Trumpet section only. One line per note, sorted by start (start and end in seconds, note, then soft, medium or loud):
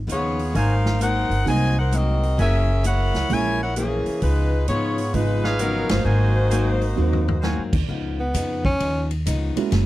0.55 0.75 F#4 medium
0.55 0.75 A#4 medium
0.55 0.75 C5 medium
0.55 0.75 G#5 medium
2.38 2.59 F#4 medium
2.38 2.59 A#4 medium
2.38 2.59 E5 medium
2.38 2.59 G#5 medium
5.43 6.02 D#4 medium
5.43 6.02 B4 medium
5.43 6.02 C#5 medium
5.43 6.02 F5 loud
6.04 6.49 F#4 medium
6.04 6.49 A#4 medium
6.04 6.49 C5 medium
6.04 6.49 G#5 medium
6.50 6.71 F#4 medium
6.50 6.71 A#4 medium
6.50 6.71 C5 medium
6.50 6.71 G#5 medium
7.41 7.62 F#4 medium
7.41 7.62 A#4 medium
7.41 7.62 C5 medium
7.41 7.62 G#5 medium